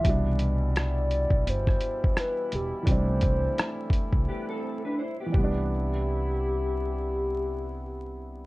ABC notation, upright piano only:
X:1
M:4/4
L:1/8
Q:"Swing 16ths" 1/4=85
K:C
V:1 name="Upright piano" clef=bass
[B,,E,G,D]8 | [E,G,CD]6- [E,G,CD] [E,G,B,D]- | [E,G,B,D]8 |]